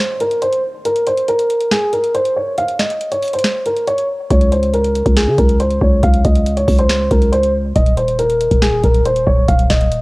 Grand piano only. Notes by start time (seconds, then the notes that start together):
Already playing: C5
0.20 A#4
0.42 C5
0.85 A#4
1.07 C5
1.28 A#4
1.71 G#4
1.93 A#4
2.15 C5
2.36 C#5
2.58 F5
2.79 D#5
3.12 C#5
3.33 C5
3.66 A#4
3.87 C#5
4.30 C#5
4.52 C5
4.74 A#4
5.17 G#4
5.38 A#4
5.60 C5
5.81 C#5
6.04 F5
6.25 D#5
6.57 C#5
6.79 C5
7.11 A#4
7.32 C5
7.76 D#5
7.97 C5
8.19 A#4
8.62 G#4
8.84 A#4
9.05 C5
9.27 C#5
9.48 F5
9.70 D#5